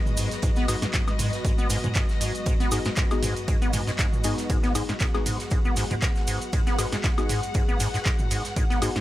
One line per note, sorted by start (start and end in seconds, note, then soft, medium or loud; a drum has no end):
0.00 9.01 G#2 medium
0.00 9.01 F#3 medium
0.00 9.01 G#3 medium
0.00 9.01 B3 medium
0.00 9.01 F#4 medium
0.00 0.42 G#4 loud
0.00 9.01 B4 medium
0.00 5.13 D#5 medium
0.06 mid tom medium
0.06 cabasa soft
0.17 0.29 G#2 medium
0.17 closed hi-hat medium
0.17 open hi-hat loud
0.17 ride medium
0.17 cabasa medium
0.31 snare medium
0.31 closed hi-hat medium
0.31 cabasa soft
0.42 0.51 G#2 medium
0.42 4.48 F#4 loud
0.42 kick loud
0.42 closed hi-hat medium
0.42 ride medium
0.42 cabasa medium
0.56 0.66 B3 loud
0.56 snare soft
0.56 closed hi-hat soft
0.56 cabasa soft
0.68 0.76 G#2 loud
0.68 0.77 B3 medium
0.68 0.77 D#4 medium
0.68 0.77 F#4 medium
0.68 0.77 G#4 loud
0.68 closed hi-hat medium
0.68 open hi-hat loud
0.68 ride medium
0.68 cabasa loud
0.68 high woodblock medium
0.82 0.86 G#2 loud
0.82 snare medium
0.82 closed hi-hat medium
0.82 cabasa soft
0.93 1.01 G#2 medium
0.93 kick loud
0.93 snare loud
0.93 clap loud
0.93 closed hi-hat medium
0.93 ride medium
0.93 cabasa medium
1.08 snare medium
1.08 cabasa soft
1.08 high woodblock medium
1.19 1.31 G#2 medium
1.19 closed hi-hat medium
1.19 mid tom medium
1.19 open hi-hat loud
1.19 ride medium
1.19 cabasa loud
1.33 snare medium
1.33 closed hi-hat medium
1.33 cabasa soft
1.44 1.52 G#2 medium
1.44 kick loud
1.44 closed hi-hat loud
1.44 closed hi-hat medium
1.44 ride medium
1.44 cabasa medium
1.58 1.68 B3 loud
1.58 cabasa soft
1.70 1.78 G#2 loud
1.70 snare soft
1.70 closed hi-hat medium
1.70 open hi-hat loud
1.70 ride medium
1.70 cabasa loud
1.84 1.88 G#2 loud
1.84 closed hi-hat medium
1.84 mid tom medium
1.84 cabasa soft
1.95 2.03 G#2 medium
1.95 kick loud
1.95 snare loud
1.95 clap loud
1.95 closed hi-hat medium
1.95 ride medium
1.95 cabasa medium
2.09 snare medium
2.09 cabasa soft
2.21 2.32 G#2 medium
2.21 closed hi-hat medium
2.21 open hi-hat loud
2.21 ride medium
2.21 cabasa loud
2.35 closed hi-hat medium
2.35 cabasa soft
2.46 2.54 G#2 medium
2.46 kick loud
2.46 closed hi-hat medium
2.46 ride medium
2.46 cabasa medium
2.60 2.70 B3 loud
2.60 snare soft
2.60 closed hi-hat soft
2.60 cabasa soft
2.71 2.79 G#2 loud
2.71 2.81 B3 medium
2.71 2.81 D#4 medium
2.71 2.81 F#4 medium
2.71 2.81 G#4 medium
2.71 closed hi-hat medium
2.71 open hi-hat loud
2.71 ride medium
2.71 cabasa loud
2.71 high woodblock medium
2.85 2.89 G#2 loud
2.85 snare soft
2.85 snare medium
2.85 closed hi-hat medium
2.85 cabasa soft
2.96 3.05 G#2 medium
2.96 kick loud
2.96 snare loud
2.96 clap loud
2.96 closed hi-hat medium
2.96 ride medium
2.96 cabasa medium
3.11 3.23 B3 medium
3.11 3.23 D#4 medium
3.11 3.23 F#4 medium
3.11 3.23 G#4 medium
3.11 snare medium
3.11 cabasa soft
3.11 high woodblock medium
3.22 3.34 G#2 medium
3.22 snare medium
3.22 closed hi-hat medium
3.22 mid tom medium
3.22 open hi-hat loud
3.22 ride medium
3.22 cabasa medium
3.36 closed hi-hat soft
3.36 cabasa soft
3.48 3.56 G#2 medium
3.48 kick loud
3.48 closed hi-hat medium
3.48 ride medium
3.48 cabasa medium
3.62 3.71 B3 loud
3.62 closed hi-hat soft
3.62 cabasa soft
3.73 3.81 G#2 loud
3.73 snare soft
3.73 closed hi-hat medium
3.73 mid tom medium
3.73 open hi-hat loud
3.73 ride medium
3.73 cabasa medium
3.87 3.91 G#2 loud
3.87 snare medium
3.87 closed hi-hat soft
3.87 cabasa soft
3.98 4.06 G#2 medium
3.98 kick loud
3.98 snare loud
3.98 clap loud
3.98 closed hi-hat medium
3.98 ride medium
3.98 cabasa medium
4.13 mid tom loud
4.13 cabasa soft
4.24 4.36 G#2 medium
4.24 4.72 B3 medium
4.24 4.72 D#4 medium
4.24 4.72 F#4 medium
4.24 4.72 G#4 loud
4.24 closed hi-hat medium
4.24 open hi-hat loud
4.24 ride medium
4.24 cabasa loud
4.38 snare medium
4.38 closed hi-hat medium
4.38 cabasa soft
4.50 4.57 G#2 medium
4.50 8.55 G#4 medium
4.50 kick loud
4.50 closed hi-hat medium
4.50 ride medium
4.50 cabasa medium
4.63 4.73 B3 loud
4.63 snare soft
4.63 closed hi-hat soft
4.63 cabasa soft
4.75 4.83 G#2 loud
4.75 4.84 B3 medium
4.75 4.84 D#4 medium
4.75 4.84 F#4 medium
4.75 4.84 G#4 loud
4.75 closed hi-hat medium
4.75 open hi-hat loud
4.75 ride medium
4.75 cabasa loud
4.75 high woodblock medium
4.89 4.93 G#2 loud
4.89 snare medium
4.89 closed hi-hat medium
4.89 cabasa soft
5.00 5.05 G#2 loud
5.00 kick loud
5.00 snare loud
5.00 clap loud
5.00 closed hi-hat medium
5.00 ride medium
5.00 cabasa soft
5.09 9.01 F#5 medium
5.14 5.22 B3 loud
5.14 5.22 D#4 medium
5.14 5.22 F#4 medium
5.14 5.22 G#4 loud
5.14 snare medium
5.14 cabasa soft
5.14 high woodblock medium
5.26 5.37 G#2 medium
5.26 closed hi-hat medium
5.26 mid tom medium
5.26 open hi-hat medium
5.26 ride medium
5.26 cabasa loud
5.40 snare medium
5.40 closed hi-hat soft
5.40 cabasa soft
5.51 5.59 G#2 medium
5.51 kick loud
5.51 closed hi-hat medium
5.51 ride medium
5.51 cabasa soft
5.65 5.75 B3 loud
5.65 cabasa soft
5.76 5.84 G#2 loud
5.76 snare soft
5.76 closed hi-hat medium
5.76 open hi-hat loud
5.76 ride medium
5.76 cabasa medium
5.91 5.94 G#2 loud
5.91 closed hi-hat medium
5.91 mid tom medium
5.91 cabasa soft
6.02 6.07 G#2 loud
6.02 kick loud
6.02 snare loud
6.02 clap loud
6.02 closed hi-hat medium
6.02 ride medium
6.02 cabasa medium
6.15 snare medium
6.15 cabasa soft
6.27 6.39 G#2 medium
6.27 closed hi-hat medium
6.27 open hi-hat loud
6.27 ride medium
6.27 cabasa loud
6.42 closed hi-hat medium
6.42 cabasa soft
6.53 6.61 G#2 medium
6.53 kick loud
6.53 closed hi-hat medium
6.53 ride medium
6.53 cabasa medium
6.67 6.76 B3 loud
6.67 snare soft
6.67 closed hi-hat soft
6.67 cabasa soft
6.78 6.86 G#2 loud
6.78 6.88 B3 medium
6.78 6.88 D#4 medium
6.78 6.88 F#4 medium
6.78 6.88 G#4 loud
6.78 closed hi-hat medium
6.78 open hi-hat loud
6.78 ride medium
6.78 cabasa loud
6.78 high woodblock medium
6.92 6.96 G#2 loud
6.92 snare medium
6.92 snare soft
6.92 closed hi-hat medium
6.92 cabasa soft
7.04 7.08 G#2 loud
7.04 kick loud
7.04 snare loud
7.04 clap loud
7.04 closed hi-hat medium
7.04 ride medium
7.04 cabasa medium
7.18 7.30 B3 medium
7.18 7.30 D#4 medium
7.18 7.30 F#4 medium
7.18 7.30 G#4 medium
7.18 snare medium
7.18 cabasa soft
7.18 high woodblock medium
7.29 7.41 G#2 medium
7.29 snare medium
7.29 closed hi-hat medium
7.29 mid tom medium
7.29 open hi-hat medium
7.29 ride medium
7.29 cabasa medium
7.43 closed hi-hat soft
7.43 closed hi-hat medium
7.43 cabasa soft
7.54 7.62 G#2 medium
7.54 kick loud
7.54 closed hi-hat medium
7.54 ride medium
7.54 cabasa soft
7.69 7.78 B3 loud
7.69 cabasa soft
7.80 7.88 G#2 loud
7.80 snare soft
7.80 closed hi-hat medium
7.80 open hi-hat loud
7.80 ride medium
7.80 cabasa loud
7.94 7.98 G#2 loud
7.94 snare medium
7.94 closed hi-hat medium
7.94 cabasa soft
8.05 8.10 G#2 loud
8.05 kick loud
8.05 snare loud
8.05 clap loud
8.05 closed hi-hat medium
8.05 ride medium
8.05 cabasa medium
8.19 mid tom medium
8.19 cabasa soft
8.30 8.42 G#2 medium
8.30 closed hi-hat medium
8.30 open hi-hat medium
8.30 ride medium
8.30 cabasa medium
8.45 snare medium
8.45 closed hi-hat medium
8.45 cabasa soft
8.56 8.64 G#2 medium
8.56 9.01 D#4 loud
8.56 kick loud
8.56 closed hi-hat medium
8.56 ride medium
8.56 cabasa medium
8.70 8.80 B3 loud
8.70 snare soft
8.70 closed hi-hat soft
8.70 cabasa soft
8.82 8.89 G#2 loud
8.82 8.91 B3 loud
8.82 8.91 D#4 medium
8.82 8.91 F#4 medium
8.82 8.91 G#4 loud
8.82 closed hi-hat medium
8.82 open hi-hat loud
8.82 ride medium
8.82 cabasa medium
8.82 high woodblock medium
8.96 9.00 G#2 loud
8.96 snare medium
8.96 closed hi-hat medium
8.96 cabasa soft